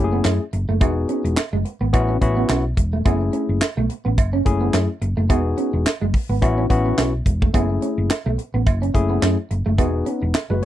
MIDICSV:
0, 0, Header, 1, 6, 480
1, 0, Start_track
1, 0, Tempo, 560748
1, 694, Time_signature, 4, 2, 24, 8
1, 9116, End_track
2, 0, Start_track
2, 0, Title_t, "Tine electric piano"
2, 0, Program_c, 0, 4
2, 0, Note_on_c, 0, 57, 82
2, 0, Note_on_c, 0, 61, 79
2, 0, Note_on_c, 0, 64, 76
2, 36, Note_on_c, 0, 68, 90
2, 337, Note_off_c, 0, 57, 0
2, 338, Note_off_c, 0, 61, 0
2, 338, Note_off_c, 0, 64, 0
2, 368, Note_off_c, 0, 68, 0
2, 691, Note_on_c, 0, 59, 75
2, 692, Note_on_c, 0, 63, 69
2, 696, Note_on_c, 0, 66, 69
2, 697, Note_on_c, 0, 68, 81
2, 1160, Note_off_c, 0, 59, 0
2, 1161, Note_off_c, 0, 63, 0
2, 1163, Note_off_c, 0, 66, 0
2, 1163, Note_off_c, 0, 68, 0
2, 1652, Note_on_c, 0, 59, 95
2, 1655, Note_on_c, 0, 61, 84
2, 1657, Note_on_c, 0, 64, 86
2, 1659, Note_on_c, 0, 66, 94
2, 1851, Note_off_c, 0, 59, 0
2, 1852, Note_off_c, 0, 61, 0
2, 1854, Note_off_c, 0, 64, 0
2, 1854, Note_off_c, 0, 66, 0
2, 1894, Note_on_c, 0, 59, 88
2, 1897, Note_on_c, 0, 61, 75
2, 1898, Note_on_c, 0, 64, 84
2, 1901, Note_on_c, 0, 66, 97
2, 2257, Note_off_c, 0, 59, 0
2, 2258, Note_off_c, 0, 61, 0
2, 2259, Note_off_c, 0, 64, 0
2, 2260, Note_off_c, 0, 66, 0
2, 2613, Note_on_c, 0, 57, 72
2, 2616, Note_on_c, 0, 61, 69
2, 2617, Note_on_c, 0, 64, 72
2, 2620, Note_on_c, 0, 68, 80
2, 3081, Note_off_c, 0, 57, 0
2, 3083, Note_off_c, 0, 61, 0
2, 3083, Note_off_c, 0, 64, 0
2, 3085, Note_off_c, 0, 68, 0
2, 3812, Note_on_c, 0, 57, 78
2, 3813, Note_on_c, 0, 61, 77
2, 3816, Note_on_c, 0, 64, 75
2, 3820, Note_on_c, 0, 68, 95
2, 4176, Note_off_c, 0, 57, 0
2, 4176, Note_off_c, 0, 61, 0
2, 4178, Note_off_c, 0, 64, 0
2, 4180, Note_off_c, 0, 68, 0
2, 4533, Note_on_c, 0, 59, 79
2, 4535, Note_on_c, 0, 63, 68
2, 4536, Note_on_c, 0, 66, 72
2, 4540, Note_on_c, 0, 68, 88
2, 5001, Note_off_c, 0, 59, 0
2, 5002, Note_off_c, 0, 63, 0
2, 5003, Note_off_c, 0, 66, 0
2, 5005, Note_off_c, 0, 68, 0
2, 5491, Note_on_c, 0, 59, 89
2, 5493, Note_on_c, 0, 61, 86
2, 5496, Note_on_c, 0, 64, 86
2, 5500, Note_on_c, 0, 66, 98
2, 5691, Note_off_c, 0, 59, 0
2, 5692, Note_off_c, 0, 61, 0
2, 5693, Note_off_c, 0, 64, 0
2, 5695, Note_off_c, 0, 66, 0
2, 5732, Note_on_c, 0, 59, 86
2, 5734, Note_on_c, 0, 61, 77
2, 5736, Note_on_c, 0, 64, 76
2, 5739, Note_on_c, 0, 66, 99
2, 6096, Note_off_c, 0, 59, 0
2, 6097, Note_off_c, 0, 61, 0
2, 6098, Note_off_c, 0, 64, 0
2, 6099, Note_off_c, 0, 66, 0
2, 6450, Note_on_c, 0, 57, 73
2, 6453, Note_on_c, 0, 61, 68
2, 6457, Note_on_c, 0, 64, 71
2, 6457, Note_on_c, 0, 68, 79
2, 6920, Note_off_c, 0, 57, 0
2, 6921, Note_off_c, 0, 61, 0
2, 6923, Note_off_c, 0, 64, 0
2, 6923, Note_off_c, 0, 68, 0
2, 7652, Note_on_c, 0, 57, 87
2, 7654, Note_on_c, 0, 61, 69
2, 7656, Note_on_c, 0, 64, 77
2, 7660, Note_on_c, 0, 68, 94
2, 8016, Note_off_c, 0, 57, 0
2, 8017, Note_off_c, 0, 61, 0
2, 8018, Note_off_c, 0, 64, 0
2, 8020, Note_off_c, 0, 68, 0
2, 8374, Note_on_c, 0, 59, 82
2, 8375, Note_on_c, 0, 63, 69
2, 8379, Note_on_c, 0, 66, 67
2, 8379, Note_on_c, 0, 68, 82
2, 8617, Note_off_c, 0, 66, 0
2, 8617, Note_off_c, 0, 68, 0
2, 8842, Note_off_c, 0, 59, 0
2, 8842, Note_off_c, 0, 63, 0
2, 8992, Note_on_c, 0, 71, 64
2, 8997, Note_on_c, 0, 66, 56
2, 9091, Note_off_c, 0, 71, 0
2, 9093, Note_off_c, 0, 66, 0
2, 9116, End_track
3, 0, Start_track
3, 0, Title_t, "Clean electric guitar"
3, 0, Program_c, 1, 27
3, 108, Note_on_c, 1, 59, 72
3, 168, Note_off_c, 1, 59, 0
3, 213, Note_on_c, 1, 61, 70
3, 289, Note_off_c, 1, 61, 0
3, 589, Note_on_c, 1, 57, 77
3, 648, Note_off_c, 1, 57, 0
3, 691, Note_on_c, 1, 59, 78
3, 767, Note_off_c, 1, 59, 0
3, 934, Note_on_c, 1, 61, 80
3, 1009, Note_off_c, 1, 61, 0
3, 1309, Note_on_c, 1, 56, 75
3, 1368, Note_off_c, 1, 56, 0
3, 1548, Note_on_c, 1, 59, 68
3, 1608, Note_off_c, 1, 59, 0
3, 1787, Note_on_c, 1, 61, 79
3, 1847, Note_off_c, 1, 61, 0
3, 2027, Note_on_c, 1, 59, 75
3, 2087, Note_off_c, 1, 59, 0
3, 2134, Note_on_c, 1, 61, 74
3, 2210, Note_off_c, 1, 61, 0
3, 2509, Note_on_c, 1, 57, 66
3, 2569, Note_off_c, 1, 57, 0
3, 2614, Note_on_c, 1, 59, 88
3, 2689, Note_off_c, 1, 59, 0
3, 2851, Note_on_c, 1, 61, 69
3, 2927, Note_off_c, 1, 61, 0
3, 3229, Note_on_c, 1, 57, 89
3, 3288, Note_off_c, 1, 57, 0
3, 3466, Note_on_c, 1, 59, 69
3, 3526, Note_off_c, 1, 59, 0
3, 3708, Note_on_c, 1, 61, 89
3, 3767, Note_off_c, 1, 61, 0
3, 3944, Note_on_c, 1, 59, 73
3, 4005, Note_off_c, 1, 59, 0
3, 4054, Note_on_c, 1, 61, 74
3, 4129, Note_off_c, 1, 61, 0
3, 4426, Note_on_c, 1, 57, 78
3, 4486, Note_off_c, 1, 57, 0
3, 4531, Note_on_c, 1, 59, 75
3, 4608, Note_off_c, 1, 59, 0
3, 4773, Note_on_c, 1, 61, 84
3, 4849, Note_off_c, 1, 61, 0
3, 5148, Note_on_c, 1, 56, 76
3, 5208, Note_off_c, 1, 56, 0
3, 5389, Note_on_c, 1, 59, 69
3, 5448, Note_off_c, 1, 59, 0
3, 5631, Note_on_c, 1, 61, 73
3, 5690, Note_off_c, 1, 61, 0
3, 5871, Note_on_c, 1, 59, 72
3, 5929, Note_off_c, 1, 59, 0
3, 5975, Note_on_c, 1, 61, 74
3, 6051, Note_off_c, 1, 61, 0
3, 6351, Note_on_c, 1, 57, 72
3, 6410, Note_off_c, 1, 57, 0
3, 6453, Note_on_c, 1, 59, 76
3, 6529, Note_off_c, 1, 59, 0
3, 6697, Note_on_c, 1, 61, 66
3, 6771, Note_off_c, 1, 61, 0
3, 7070, Note_on_c, 1, 57, 80
3, 7129, Note_off_c, 1, 57, 0
3, 7310, Note_on_c, 1, 59, 62
3, 7369, Note_off_c, 1, 59, 0
3, 7549, Note_on_c, 1, 61, 77
3, 7608, Note_off_c, 1, 61, 0
3, 7788, Note_on_c, 1, 59, 70
3, 7847, Note_off_c, 1, 59, 0
3, 7890, Note_on_c, 1, 61, 77
3, 7967, Note_off_c, 1, 61, 0
3, 8267, Note_on_c, 1, 57, 79
3, 8327, Note_off_c, 1, 57, 0
3, 8374, Note_on_c, 1, 59, 73
3, 8449, Note_off_c, 1, 59, 0
3, 8614, Note_on_c, 1, 61, 82
3, 8690, Note_off_c, 1, 61, 0
3, 8988, Note_on_c, 1, 56, 83
3, 9047, Note_off_c, 1, 56, 0
3, 9116, End_track
4, 0, Start_track
4, 0, Title_t, "Fingered electric bass"
4, 0, Program_c, 2, 33
4, 0, Note_on_c, 2, 30, 85
4, 167, Note_off_c, 2, 30, 0
4, 213, Note_on_c, 2, 42, 81
4, 322, Note_off_c, 2, 42, 0
4, 454, Note_on_c, 2, 30, 98
4, 562, Note_off_c, 2, 30, 0
4, 586, Note_on_c, 2, 30, 89
4, 696, Note_off_c, 2, 30, 0
4, 696, Note_on_c, 2, 28, 100
4, 888, Note_off_c, 2, 28, 0
4, 1065, Note_on_c, 2, 28, 87
4, 1151, Note_off_c, 2, 28, 0
4, 1307, Note_on_c, 2, 30, 87
4, 1392, Note_off_c, 2, 30, 0
4, 1546, Note_on_c, 2, 32, 94
4, 1632, Note_off_c, 2, 32, 0
4, 1659, Note_on_c, 2, 33, 102
4, 1850, Note_off_c, 2, 33, 0
4, 1897, Note_on_c, 2, 33, 95
4, 2088, Note_off_c, 2, 33, 0
4, 2135, Note_on_c, 2, 35, 84
4, 2327, Note_off_c, 2, 35, 0
4, 2374, Note_on_c, 2, 28, 81
4, 2567, Note_off_c, 2, 28, 0
4, 2618, Note_on_c, 2, 30, 105
4, 2809, Note_off_c, 2, 30, 0
4, 2988, Note_on_c, 2, 30, 87
4, 3073, Note_off_c, 2, 30, 0
4, 3230, Note_on_c, 2, 35, 90
4, 3315, Note_off_c, 2, 35, 0
4, 3472, Note_on_c, 2, 33, 90
4, 3556, Note_off_c, 2, 33, 0
4, 3576, Note_on_c, 2, 30, 96
4, 3768, Note_off_c, 2, 30, 0
4, 3816, Note_on_c, 2, 30, 79
4, 4008, Note_off_c, 2, 30, 0
4, 4053, Note_on_c, 2, 42, 79
4, 4161, Note_off_c, 2, 42, 0
4, 4292, Note_on_c, 2, 30, 95
4, 4401, Note_off_c, 2, 30, 0
4, 4428, Note_on_c, 2, 30, 87
4, 4535, Note_off_c, 2, 30, 0
4, 4535, Note_on_c, 2, 28, 98
4, 4728, Note_off_c, 2, 28, 0
4, 4908, Note_on_c, 2, 28, 84
4, 4993, Note_off_c, 2, 28, 0
4, 5151, Note_on_c, 2, 30, 85
4, 5235, Note_off_c, 2, 30, 0
4, 5386, Note_on_c, 2, 32, 87
4, 5472, Note_off_c, 2, 32, 0
4, 5498, Note_on_c, 2, 33, 100
4, 5689, Note_off_c, 2, 33, 0
4, 5737, Note_on_c, 2, 33, 91
4, 5929, Note_off_c, 2, 33, 0
4, 5973, Note_on_c, 2, 35, 73
4, 6166, Note_off_c, 2, 35, 0
4, 6213, Note_on_c, 2, 28, 84
4, 6406, Note_off_c, 2, 28, 0
4, 6454, Note_on_c, 2, 30, 104
4, 6647, Note_off_c, 2, 30, 0
4, 6828, Note_on_c, 2, 30, 93
4, 6913, Note_off_c, 2, 30, 0
4, 7072, Note_on_c, 2, 35, 96
4, 7155, Note_off_c, 2, 35, 0
4, 7310, Note_on_c, 2, 33, 88
4, 7395, Note_off_c, 2, 33, 0
4, 7419, Note_on_c, 2, 30, 98
4, 7610, Note_off_c, 2, 30, 0
4, 7658, Note_on_c, 2, 30, 79
4, 7849, Note_off_c, 2, 30, 0
4, 7894, Note_on_c, 2, 42, 92
4, 8002, Note_off_c, 2, 42, 0
4, 8137, Note_on_c, 2, 30, 99
4, 8244, Note_off_c, 2, 30, 0
4, 8268, Note_on_c, 2, 30, 91
4, 8376, Note_off_c, 2, 30, 0
4, 8376, Note_on_c, 2, 28, 89
4, 8568, Note_off_c, 2, 28, 0
4, 8750, Note_on_c, 2, 28, 83
4, 8835, Note_off_c, 2, 28, 0
4, 8988, Note_on_c, 2, 30, 88
4, 9073, Note_off_c, 2, 30, 0
4, 9116, End_track
5, 0, Start_track
5, 0, Title_t, "Muted clean electric guitar strokes"
5, 453, Note_on_c, 9, 29, 40
5, 539, Note_off_c, 9, 29, 0
5, 1066, Note_on_c, 9, 29, 47
5, 1152, Note_off_c, 9, 29, 0
5, 1414, Note_on_c, 9, 29, 43
5, 1500, Note_off_c, 9, 29, 0
5, 1894, Note_on_c, 9, 29, 35
5, 1980, Note_off_c, 9, 29, 0
5, 2371, Note_on_c, 9, 29, 39
5, 2457, Note_off_c, 9, 29, 0
5, 2749, Note_on_c, 9, 29, 47
5, 2835, Note_off_c, 9, 29, 0
5, 3335, Note_on_c, 9, 29, 46
5, 3421, Note_off_c, 9, 29, 0
5, 3812, Note_on_c, 9, 29, 39
5, 3897, Note_off_c, 9, 29, 0
5, 4293, Note_on_c, 9, 29, 39
5, 4379, Note_off_c, 9, 29, 0
5, 4907, Note_on_c, 9, 29, 47
5, 4993, Note_off_c, 9, 29, 0
5, 5257, Note_on_c, 9, 29, 40
5, 5342, Note_off_c, 9, 29, 0
5, 5737, Note_on_c, 9, 29, 37
5, 5823, Note_off_c, 9, 29, 0
5, 6217, Note_on_c, 9, 29, 41
5, 6303, Note_off_c, 9, 29, 0
5, 6589, Note_on_c, 9, 29, 41
5, 6675, Note_off_c, 9, 29, 0
5, 7176, Note_on_c, 9, 29, 44
5, 7262, Note_off_c, 9, 29, 0
5, 7652, Note_on_c, 9, 29, 43
5, 7738, Note_off_c, 9, 29, 0
5, 8137, Note_on_c, 9, 29, 42
5, 8223, Note_off_c, 9, 29, 0
5, 8745, Note_on_c, 9, 29, 48
5, 8831, Note_off_c, 9, 29, 0
5, 9116, End_track
6, 0, Start_track
6, 0, Title_t, "Drums"
6, 209, Note_on_c, 9, 42, 90
6, 211, Note_on_c, 9, 38, 94
6, 211, Note_on_c, 9, 39, 77
6, 217, Note_on_c, 9, 56, 69
6, 295, Note_off_c, 9, 42, 0
6, 297, Note_off_c, 9, 38, 0
6, 297, Note_off_c, 9, 39, 0
6, 303, Note_off_c, 9, 56, 0
6, 451, Note_on_c, 9, 42, 66
6, 537, Note_off_c, 9, 42, 0
6, 693, Note_on_c, 9, 42, 80
6, 695, Note_on_c, 9, 36, 106
6, 696, Note_on_c, 9, 56, 83
6, 779, Note_off_c, 9, 42, 0
6, 780, Note_off_c, 9, 36, 0
6, 782, Note_off_c, 9, 56, 0
6, 931, Note_on_c, 9, 42, 64
6, 1016, Note_off_c, 9, 42, 0
6, 1072, Note_on_c, 9, 42, 54
6, 1157, Note_off_c, 9, 42, 0
6, 1170, Note_on_c, 9, 42, 80
6, 1174, Note_on_c, 9, 38, 118
6, 1174, Note_on_c, 9, 39, 101
6, 1175, Note_on_c, 9, 56, 75
6, 1256, Note_off_c, 9, 42, 0
6, 1260, Note_off_c, 9, 38, 0
6, 1260, Note_off_c, 9, 39, 0
6, 1260, Note_off_c, 9, 56, 0
6, 1414, Note_on_c, 9, 42, 72
6, 1500, Note_off_c, 9, 42, 0
6, 1658, Note_on_c, 9, 36, 103
6, 1658, Note_on_c, 9, 42, 84
6, 1660, Note_on_c, 9, 56, 81
6, 1743, Note_off_c, 9, 36, 0
6, 1743, Note_off_c, 9, 42, 0
6, 1745, Note_off_c, 9, 56, 0
6, 1897, Note_on_c, 9, 36, 85
6, 1897, Note_on_c, 9, 42, 67
6, 1983, Note_off_c, 9, 36, 0
6, 1983, Note_off_c, 9, 42, 0
6, 2133, Note_on_c, 9, 42, 92
6, 2135, Note_on_c, 9, 38, 104
6, 2135, Note_on_c, 9, 39, 92
6, 2136, Note_on_c, 9, 56, 77
6, 2219, Note_off_c, 9, 42, 0
6, 2221, Note_off_c, 9, 38, 0
6, 2221, Note_off_c, 9, 39, 0
6, 2222, Note_off_c, 9, 56, 0
6, 2374, Note_on_c, 9, 36, 90
6, 2374, Note_on_c, 9, 42, 66
6, 2459, Note_off_c, 9, 36, 0
6, 2459, Note_off_c, 9, 42, 0
6, 2616, Note_on_c, 9, 36, 113
6, 2616, Note_on_c, 9, 42, 80
6, 2616, Note_on_c, 9, 56, 77
6, 2701, Note_off_c, 9, 56, 0
6, 2702, Note_off_c, 9, 36, 0
6, 2702, Note_off_c, 9, 42, 0
6, 2850, Note_on_c, 9, 42, 67
6, 2936, Note_off_c, 9, 42, 0
6, 3092, Note_on_c, 9, 42, 86
6, 3095, Note_on_c, 9, 38, 113
6, 3095, Note_on_c, 9, 39, 99
6, 3097, Note_on_c, 9, 56, 78
6, 3177, Note_off_c, 9, 42, 0
6, 3181, Note_off_c, 9, 38, 0
6, 3181, Note_off_c, 9, 39, 0
6, 3182, Note_off_c, 9, 56, 0
6, 3335, Note_on_c, 9, 42, 73
6, 3420, Note_off_c, 9, 42, 0
6, 3575, Note_on_c, 9, 42, 78
6, 3577, Note_on_c, 9, 36, 112
6, 3578, Note_on_c, 9, 56, 74
6, 3661, Note_off_c, 9, 42, 0
6, 3663, Note_off_c, 9, 36, 0
6, 3664, Note_off_c, 9, 56, 0
6, 3817, Note_on_c, 9, 36, 85
6, 3819, Note_on_c, 9, 42, 69
6, 3902, Note_off_c, 9, 36, 0
6, 3905, Note_off_c, 9, 42, 0
6, 4055, Note_on_c, 9, 42, 86
6, 4057, Note_on_c, 9, 38, 114
6, 4057, Note_on_c, 9, 39, 89
6, 4057, Note_on_c, 9, 56, 67
6, 4141, Note_off_c, 9, 42, 0
6, 4142, Note_off_c, 9, 56, 0
6, 4143, Note_off_c, 9, 38, 0
6, 4143, Note_off_c, 9, 39, 0
6, 4294, Note_on_c, 9, 42, 67
6, 4379, Note_off_c, 9, 42, 0
6, 4535, Note_on_c, 9, 36, 103
6, 4536, Note_on_c, 9, 42, 80
6, 4536, Note_on_c, 9, 56, 80
6, 4621, Note_off_c, 9, 36, 0
6, 4622, Note_off_c, 9, 42, 0
6, 4622, Note_off_c, 9, 56, 0
6, 4772, Note_on_c, 9, 42, 61
6, 4858, Note_off_c, 9, 42, 0
6, 5015, Note_on_c, 9, 56, 78
6, 5017, Note_on_c, 9, 42, 84
6, 5020, Note_on_c, 9, 38, 114
6, 5020, Note_on_c, 9, 39, 87
6, 5101, Note_off_c, 9, 56, 0
6, 5103, Note_off_c, 9, 42, 0
6, 5106, Note_off_c, 9, 38, 0
6, 5106, Note_off_c, 9, 39, 0
6, 5255, Note_on_c, 9, 36, 88
6, 5259, Note_on_c, 9, 46, 73
6, 5340, Note_off_c, 9, 36, 0
6, 5345, Note_off_c, 9, 46, 0
6, 5498, Note_on_c, 9, 36, 97
6, 5498, Note_on_c, 9, 42, 79
6, 5499, Note_on_c, 9, 56, 67
6, 5583, Note_off_c, 9, 36, 0
6, 5584, Note_off_c, 9, 42, 0
6, 5585, Note_off_c, 9, 56, 0
6, 5737, Note_on_c, 9, 36, 85
6, 5740, Note_on_c, 9, 42, 71
6, 5822, Note_off_c, 9, 36, 0
6, 5826, Note_off_c, 9, 42, 0
6, 5974, Note_on_c, 9, 56, 72
6, 5976, Note_on_c, 9, 42, 99
6, 5978, Note_on_c, 9, 38, 103
6, 5978, Note_on_c, 9, 39, 81
6, 6060, Note_off_c, 9, 56, 0
6, 6062, Note_off_c, 9, 42, 0
6, 6064, Note_off_c, 9, 38, 0
6, 6064, Note_off_c, 9, 39, 0
6, 6213, Note_on_c, 9, 36, 90
6, 6216, Note_on_c, 9, 42, 66
6, 6299, Note_off_c, 9, 36, 0
6, 6301, Note_off_c, 9, 42, 0
6, 6352, Note_on_c, 9, 36, 101
6, 6438, Note_off_c, 9, 36, 0
6, 6456, Note_on_c, 9, 36, 114
6, 6456, Note_on_c, 9, 56, 77
6, 6457, Note_on_c, 9, 42, 83
6, 6541, Note_off_c, 9, 36, 0
6, 6541, Note_off_c, 9, 56, 0
6, 6542, Note_off_c, 9, 42, 0
6, 6694, Note_on_c, 9, 42, 66
6, 6780, Note_off_c, 9, 42, 0
6, 6935, Note_on_c, 9, 42, 86
6, 6936, Note_on_c, 9, 56, 69
6, 6938, Note_on_c, 9, 38, 120
6, 6938, Note_on_c, 9, 39, 103
6, 7020, Note_off_c, 9, 42, 0
6, 7022, Note_off_c, 9, 56, 0
6, 7024, Note_off_c, 9, 38, 0
6, 7024, Note_off_c, 9, 39, 0
6, 7178, Note_on_c, 9, 42, 69
6, 7263, Note_off_c, 9, 42, 0
6, 7418, Note_on_c, 9, 36, 100
6, 7418, Note_on_c, 9, 56, 75
6, 7419, Note_on_c, 9, 42, 70
6, 7503, Note_off_c, 9, 56, 0
6, 7504, Note_off_c, 9, 36, 0
6, 7505, Note_off_c, 9, 42, 0
6, 7557, Note_on_c, 9, 42, 51
6, 7642, Note_off_c, 9, 42, 0
6, 7657, Note_on_c, 9, 36, 84
6, 7662, Note_on_c, 9, 42, 64
6, 7743, Note_off_c, 9, 36, 0
6, 7747, Note_off_c, 9, 42, 0
6, 7896, Note_on_c, 9, 56, 71
6, 7898, Note_on_c, 9, 42, 95
6, 7900, Note_on_c, 9, 38, 102
6, 7900, Note_on_c, 9, 39, 82
6, 7981, Note_off_c, 9, 56, 0
6, 7984, Note_off_c, 9, 42, 0
6, 7986, Note_off_c, 9, 38, 0
6, 7986, Note_off_c, 9, 39, 0
6, 8137, Note_on_c, 9, 42, 68
6, 8223, Note_off_c, 9, 42, 0
6, 8375, Note_on_c, 9, 36, 99
6, 8377, Note_on_c, 9, 42, 86
6, 8378, Note_on_c, 9, 56, 77
6, 8461, Note_off_c, 9, 36, 0
6, 8463, Note_off_c, 9, 42, 0
6, 8463, Note_off_c, 9, 56, 0
6, 8612, Note_on_c, 9, 42, 64
6, 8698, Note_off_c, 9, 42, 0
6, 8853, Note_on_c, 9, 56, 67
6, 8854, Note_on_c, 9, 42, 84
6, 8857, Note_on_c, 9, 38, 126
6, 8857, Note_on_c, 9, 39, 94
6, 8939, Note_off_c, 9, 42, 0
6, 8939, Note_off_c, 9, 56, 0
6, 8943, Note_off_c, 9, 38, 0
6, 8943, Note_off_c, 9, 39, 0
6, 9116, End_track
0, 0, End_of_file